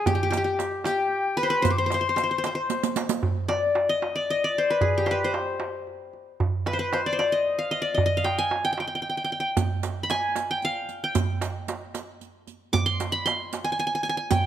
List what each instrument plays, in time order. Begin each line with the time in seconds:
Already playing: qanun G#4
0.06 qanun G4, flute G5, riq, darbuka dum
0.15 qanun G4
0.23 qanun G4
0.31 qanun G4, riq, darbuka tek
0.37 qanun G4
0.44 qanun G4
0.59 riq, darbuka tek
0.84 qanun G4, flute G5, riq, darbuka tek
1.37 qanun B4, flute B5, riq, darbuka ka
1.43 qanun C5
1.50 qanun B4
1.62 qanun C5, flute C6, riq, darbuka dum
1.70 qanun C5, flute D6
1.78 qanun C5, flute C6
1.86 qanun C5
1.90 qanun C5, riq, darbuka tek
2.01 qanun C5
2.09 qanun C5
2.16 qanun C5, riq, darbuka tek
2.23 qanun C5
2.31 qanun C5
2.38 qanun C5
2.44 qanun C5, riq, darbuka tek
2.55 qanun C5
2.70 riq, darbuka tek
2.83 riq, darbuka ka
2.96 riq, darbuka tek
3.09 riq, darbuka ka
3.23 darbuka dum
3.48 qanun D5, darbuka tek
3.75 darbuka tek
3.89 qanun D#5
4.02 darbuka tek
4.16 qanun D5
4.28 qanun D#5, darbuka ka
4.44 qanun D5
4.55 qanun C5, darbuka ka
4.70 qanun B4
4.81 qanun G#4, darbuka dum
4.98 qanun G4
5.06 qanun C5, darbuka tek
5.11 qanun B4
5.24 qanun C5
5.34 darbuka tek
5.60 darbuka tek
5.87 darbuka ka
6.13 darbuka ka
6.40 darbuka dum
6.66 qanun B4, darbuka tek
6.73 qanun C5
6.79 qanun B4
6.93 qanun C5, darbuka tek
7.06 qanun D5
7.13 qanun C5
7.19 qanun D5, darbuka tek
7.32 qanun D#5
7.46 darbuka ka
7.59 qanun F5
7.71 qanun D#5, darbuka ka
7.82 qanun D5
7.94 qanun D#5, darbuka dum
8.06 qanun D#5
8.17 qanun F5
8.24 qanun G5, darbuka tek
8.38 qanun G#5
8.51 darbuka tek
8.65 qanun G5
8.73 qanun G5
8.78 qanun G5, darbuka tek
8.88 qanun G5
8.95 qanun G5
9.02 qanun G5, darbuka ka
9.09 qanun G5
9.17 qanun G5
9.24 qanun G5
9.30 qanun G5, darbuka ka
9.40 qanun G5
9.57 riq, darbuka dum
9.83 riq, darbuka tek
10.03 qanun B5
10.10 qanun G#5, riq, darbuka tek
10.36 riq, darbuka tek
10.51 qanun G5
10.62 qanun F5, riq, darbuka ka
10.89 riq, darbuka ka
11.04 qanun G5
11.15 riq, darbuka dum
11.41 riq, darbuka tek
11.68 riq, darbuka tek
11.94 riq, darbuka tek
12.21 riq, darbuka ka
12.47 riq, darbuka ka
12.73 qanun D6, riq, darbuka dum
12.86 qanun C6
13.00 riq, darbuka tek
13.12 qanun B5
13.26 qanun C6, riq, darbuka tek
13.53 riq, darbuka tek
13.64 qanun G#5
13.72 qanun G#5
13.79 qanun G#5, riq
13.87 qanun G#5
13.95 qanun G#5
14.03 qanun G#5, riq, darbuka ka
14.09 qanun G#5
14.17 qanun G#5
14.31 qanun G5, riq, darbuka dum